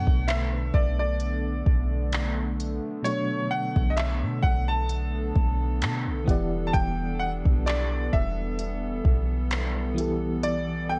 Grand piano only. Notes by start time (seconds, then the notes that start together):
Already playing: F#5
0.28 E5
0.74 D5
1.00 D5
3.04 C#5
3.51 F#5
3.90 D#5
3.97 E5
4.43 F#5
4.68 A5
6.67 A5
6.74 G5
7.19 F#5
7.66 D5
8.12 E5
10.44 D5
10.89 G5